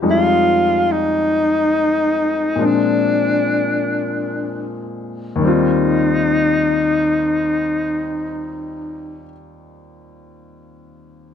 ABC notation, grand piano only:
X:1
M:4/4
L:1/8
Q:"Swing" 1/4=40
K:Eb
V:1 name="Grand piano" clef=bass
[F,,F,G,A,E]4 [B,,F,A,CD]4 | [E,,E,G,CF]8 |]